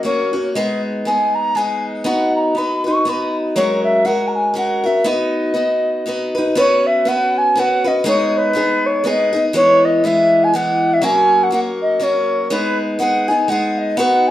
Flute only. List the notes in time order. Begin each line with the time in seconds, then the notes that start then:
0.05 C#5
0.55 D#5
1.07 G#5
1.35 A#5
1.56 G#5
2.06 F#5
2.36 A#5
2.58 B5
2.88 C#6
3.10 B5
3.56 C#5
3.84 E5
4.06 F#5
4.28 A#5
4.35 G#5
4.58 F#5
4.86 E5
5.07 D#5
6.59 C#5
6.87 E5
7.08 F#5
7.38 G#5
7.59 F#5
7.88 D#5
8.07 C#5
8.26 C#5
8.38 B4
8.86 C#5
9.06 D#5
9.56 C#5
9.85 D#5
10.06 E5
10.44 G#5
10.55 F#5
10.94 E5
11.04 G#5
11.44 F#5
11.54 F#5
11.82 D#5
12.03 C#5
12.51 B4
13.00 F#5
13.28 G#5
13.49 F#5
13.78 D#5
13.98 F#5